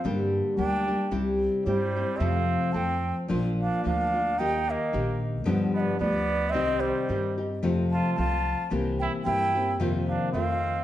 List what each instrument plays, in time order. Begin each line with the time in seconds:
0.04 nylon-string guitar G2 D3 G3 A#3 D4 G4, upright bass G2
0.57 upright bass D2, nylon-string guitar G3 A#3 D4 G4, trumpet D4, bansuri G5
0.88 nylon-string guitar G3 A#3 D4 G4
1.11 upright bass C2, nylon-string guitar C3 G3 C4 E4 G4
1.66 upright bass G2, nylon-string guitar G3 C4 E4 G4, trumpet G3, bansuri C5 C#5
1.96 nylon-string guitar C4 E4 G4
2.16 nylon-string guitar F2 C3, upright bass F2, trumpet C4, bansuri F5
2.21 nylon-string guitar F3 A3 C4 A4
2.72 upright bass F2, nylon-string guitar F3 A3 C4 A4, trumpet C4, bansuri A5
2.77 bansuri G5
3.28 upright bass A#1, nylon-string guitar A#2 F3 A#3 D4 F4
3.62 trumpet D4, bansuri F5
3.84 upright bass D2, nylon-string guitar F3 A#3 D4 F4, bansuri F5
3.88 trumpet D4
4.14 nylon-string guitar A#3 D4 F4
4.38 upright bass D#2, nylon-string guitar D#3 A#3 D#4 G4, trumpet D#4, bansuri G5
4.69 trumpet A#3, bansuri D#5
4.93 upright bass A#1, nylon-string guitar D#3 A#3 D#4 G4
5.45 nylon-string guitar G2 D3 F3 B3 D4 G4, upright bass G2
5.74 trumpet B3, bansuri D#5
5.80 bansuri D5
5.99 upright bass D2, nylon-string guitar F3 B3 D4 G4, trumpet B3, bansuri D5
6.50 trumpet C4, bansuri D#5 E5
6.54 upright bass C2, nylon-string guitar C3 D#3 C4 D#4 G4
6.80 trumpet G3, bansuri C5
7.09 upright bass G2, nylon-string guitar D#3 C4 D#4 G4
7.38 nylon-string guitar C4 D#4 G4
7.63 nylon-string guitar F2 C3 F3 A3 C4 F4, upright bass F2
7.91 trumpet F4, bansuri A5
8.15 nylon-string guitar F3 A3 C4 F4, bansuri A5
8.19 upright bass C2, trumpet F4
8.70 upright bass C2, nylon-string guitar C3 E3 A#3 C4 G4
8.99 trumpet E4, bansuri G5
9.25 upright bass G2, nylon-string guitar E3 A#3 C4 G4, trumpet E4, bansuri G5
9.55 nylon-string guitar A#3 C4 G4
9.80 nylon-string guitar F2 C3 D#3 A#3 C4 F4, upright bass F2
10.07 trumpet D4, bansuri F5
10.32 upright bass F2, nylon-string guitar D#3 A3 D#4 F4, trumpet C4, bansuri F5